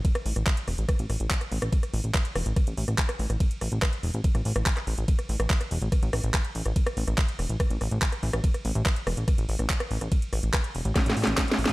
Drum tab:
RD |x-----------x-----------x-----------x-----------|x-----------x-----------x-----------x-----------|x-----------x-----------x-----------x-----------|x-----------x-----------x-----------x-----------|
HH |x--x--o--x--x--x--o--x--x--x--o--x--x--x--o--x--|x--x--o--x--x--x--o--x--x--x--o--x--x--x--o--x--|x--x--o--x--x--x--o--x--x--x--o--x--x--x--o--x--|x--x--o--x--x--x--o--x--x--x--o--x--x--x--o--x--|
CP |------------x-----------------------x-----------|------------x-----------------------x-----------|------------x-----------------------x--x--------|------------x-----------------------x-----------|
SD |---r-----r--------r-----r-----r--------r-----r--|---r--------r-----r-----r--------r-----r-----r--|------r-----r--------------r-----r-----r--------|---r-----r-----r--------r-----r-----r--------r--|
BD |o-----------o-----------o-----------o-----------|o-----------o-----------o-----------o-----------|o-----------o-----------o-----------o-----------|o-----------o-----------o-----------o-----------|

RD |x-----------x-----------x-----------x-----------|x-----------x-----------x-----------x-----------|x-----------x-----------x-----------x-----------|
HH |x--x--o--x--x--x--o--x--x--x--o--x--x--x--o--x--|x--x--o--x--x--x--o--x--x--x--o--x--x--x--o--x--|x--x--o--x--x--x--o--x--x--x--o--x--x--x--o--x--|
CP |------------x-----------------------x-----------|------------x-----------------------x-----------|------------x-----------------------x-----------|
SD |---r-----r--------r-----r-----r--------r-----r--|---r--------r-----r-----r--------r-----r-----r--|------r-----r-----------o---o---o---o---o---o---|
BD |o-----------o-----------o-----------o-----------|o-----------o-----------o-----------o-----------|o-----------o-----------o-----------o-----------|